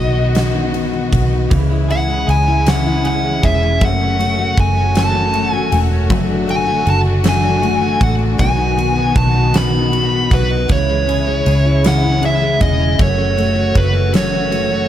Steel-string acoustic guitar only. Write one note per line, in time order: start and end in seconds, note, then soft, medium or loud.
0.00 0.34 B2 medium
0.00 1.54 F#3 medium
0.00 0.73 B3 medium
0.00 0.15 D#4 medium
0.00 0.92 F#4 medium
0.16 0.53 D#4 medium
0.35 1.51 B2 medium
0.54 1.32 D#4 medium
0.74 1.12 B3 medium
0.93 1.59 F#4 medium
1.13 1.59 B3 medium
1.33 1.59 D#4 medium
1.52 2.66 C#3 medium
1.71 2.47 E4 medium
1.90 2.29 C#4 medium
2.10 3.24 G#4 medium
2.29 3.05 C#4 medium
2.48 2.85 E4 medium
2.67 3.89 C#3 medium
2.86 3.62 E4 medium
3.06 3.43 C#4 medium
3.25 3.90 G#4 medium
3.44 4.01 C#4 medium
3.63 3.89 E4 medium
3.82 4.94 F#2 medium
4.01 4.75 C#4 medium
4.19 4.57 A3 medium
4.39 5.53 F#4 medium
4.58 5.34 A3 medium
4.76 5.13 C#4 medium
4.95 6.17 F#2 medium
5.15 5.90 C#4 medium
5.35 5.71 A3 medium
5.53 6.66 F#4 medium
5.72 6.47 A3 medium
5.91 6.18 C#4 medium
6.10 7.24 F#3 medium
6.29 7.04 D4 medium
6.47 6.84 A3 medium
6.66 7.81 F#4 medium
6.85 7.61 A3 medium
7.05 7.42 D4 medium
7.24 10.74 F#3 medium
7.43 8.18 D4 medium
7.62 7.99 A3 medium
7.81 8.96 F#4 medium
8.00 8.46 A3 medium
8.19 8.46 D4 medium
8.38 9.53 B2 medium
8.57 9.33 D#4 medium
8.77 9.14 B3 medium
8.96 10.11 F#4 medium
9.15 9.92 B3 medium
9.34 9.73 D#4 medium
9.54 10.68 B2 medium
9.74 10.49 D#4 medium
9.93 10.29 B3 medium
10.12 10.77 F#4 medium
10.30 10.77 B3 medium
10.50 10.77 D#4 medium
10.68 11.84 C#3 medium
10.89 11.64 E4 medium
11.07 11.46 C#4 medium
11.27 12.41 G#4 medium
11.46 12.22 C#4 medium
11.66 12.03 E4 medium
11.85 13.07 C#3 medium
12.04 12.80 E4 medium
12.22 12.61 C#4 medium
12.42 13.07 G#4 medium
12.61 13.19 C#4 medium
12.81 13.07 E4 medium
13.00 14.13 F#2 medium
13.19 13.93 C#4 medium
13.37 13.75 A3 medium
13.56 14.71 F#4 medium
13.75 14.51 A3 medium
13.94 14.32 C#4 medium
14.14 14.88 F#2 medium
14.33 14.88 C#4 medium
14.52 14.88 A3 medium
14.71 14.88 F#4 medium